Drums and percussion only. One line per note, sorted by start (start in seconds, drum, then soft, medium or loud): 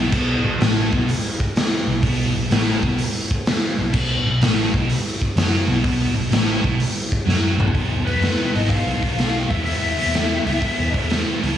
0.12 kick loud
0.12 crash medium
0.61 snare loud
0.61 open hi-hat medium
0.93 kick medium
1.09 open hi-hat medium
1.40 kick medium
1.56 snare loud
1.56 open hi-hat medium
2.03 kick loud
2.03 open hi-hat medium
2.51 snare loud
2.51 open hi-hat medium
2.83 kick medium
2.98 open hi-hat medium
3.31 kick medium
3.46 snare loud
3.46 open hi-hat medium
3.93 kick loud
3.93 crash medium
4.41 snare loud
4.41 open hi-hat medium
4.74 kick medium
4.89 open hi-hat medium
5.22 kick medium
5.37 snare loud
5.37 open hi-hat medium
5.84 kick loud
5.84 open hi-hat medium
6.32 snare loud
6.32 open hi-hat medium
6.64 kick medium
6.80 open hi-hat medium
7.12 kick medium
7.29 snare medium
7.60 mid tom medium
7.68 floor tom medium
7.75 kick loud
7.75 open hi-hat medium
8.07 open hi-hat soft
8.22 snare medium
8.22 open hi-hat medium
8.55 open hi-hat soft
8.64 snare soft
8.70 kick loud
8.70 open hi-hat medium
9.02 kick medium
9.02 open hi-hat medium
9.18 snare medium
9.18 open hi-hat medium
9.51 kick loud
9.51 open hi-hat soft
9.66 open hi-hat medium
9.99 open hi-hat medium
10.14 snare loud
10.14 open hi-hat medium
10.47 open hi-hat soft
10.62 kick loud
10.62 open hi-hat medium
10.94 kick medium
10.94 open hi-hat soft
11.10 snare medium
11.10 open hi-hat medium
11.43 open hi-hat soft